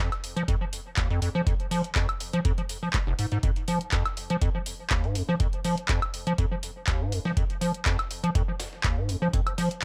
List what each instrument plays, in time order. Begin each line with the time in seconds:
0.12 snare, closed hi-hat, high woodblock
0.24 closed hi-hat, open hi-hat
0.36 acid bass F3, closed hi-hat
0.48 acid bass F2, kick, closed hi-hat
0.61 acid bass F3
0.73 closed hi-hat, open hi-hat
0.97 acid bass D#2, kick, snare, clap, closed hi-hat
1.10 acid bass F2, closed hi-hat
1.22 acid bass F2, closed hi-hat, open hi-hat
1.35 acid bass F3
1.46 acid bass F2, kick, closed hi-hat
1.60 closed hi-hat
1.71 acid bass F3, open hi-hat
1.84 closed hi-hat
1.95 acid bass F2, kick, snare, clap, closed hi-hat
2.09 closed hi-hat, high woodblock
2.20 closed hi-hat, open hi-hat
2.33 acid bass F3, closed hi-hat
2.45 acid bass F2, kick, closed hi-hat
2.58 acid bass F3, closed hi-hat
2.69 closed hi-hat, open hi-hat
2.83 acid bass F3
2.93 acid bass G#3, kick, snare, clap, closed hi-hat
3.07 acid bass F1
3.19 acid bass G#2, closed hi-hat, open hi-hat
3.32 acid bass G#2, snare, closed hi-hat
3.43 acid bass F2, kick, closed hi-hat
3.56 closed hi-hat
3.68 acid bass F3, closed hi-hat, open hi-hat
3.81 closed hi-hat
3.92 acid bass F2, kick, snare, clap, closed hi-hat
4.05 snare, closed hi-hat, high woodblock
4.17 closed hi-hat, open hi-hat
4.30 acid bass F3, closed hi-hat
4.42 acid bass F2, kick, closed hi-hat
4.55 acid bass F3
4.66 closed hi-hat, open hi-hat
4.90 acid bass D#2, kick, snare, clap, closed hi-hat
5.04 acid bass G#2, closed hi-hat
5.15 acid bass F2, closed hi-hat, open hi-hat
5.29 acid bass F3
5.40 acid bass F2, kick, closed hi-hat
5.53 closed hi-hat
5.64 acid bass F3, open hi-hat
5.78 closed hi-hat
5.89 acid bass F2, kick, snare, clap, closed hi-hat
6.02 closed hi-hat, high woodblock
6.14 closed hi-hat, open hi-hat
6.27 acid bass F3, closed hi-hat
6.38 acid bass F2, kick, closed hi-hat
6.51 acid bass F3
6.63 closed hi-hat, open hi-hat
6.87 acid bass D#2, kick, snare, clap, closed hi-hat
7.01 acid bass G#2
7.12 acid bass F2, closed hi-hat, open hi-hat
7.25 acid bass F3, snare
7.37 acid bass F2, kick, closed hi-hat
7.50 closed hi-hat
7.61 acid bass F3, closed hi-hat, open hi-hat
7.74 closed hi-hat
7.85 acid bass F2, kick, snare, clap, closed hi-hat
7.99 snare, closed hi-hat, high woodblock
8.11 closed hi-hat, open hi-hat
8.23 acid bass F3, closed hi-hat
8.35 acid bass F2, kick, closed hi-hat
8.48 acid bass F3
8.60 snare, closed hi-hat, open hi-hat
8.73 snare
8.84 acid bass D#2, kick, clap, closed hi-hat
8.97 acid bass G#2
9.09 acid bass F2, closed hi-hat, open hi-hat
9.22 acid bass F3
9.33 acid bass F2, kick, closed hi-hat
9.47 closed hi-hat, high woodblock
9.58 acid bass F3, open hi-hat
9.71 closed hi-hat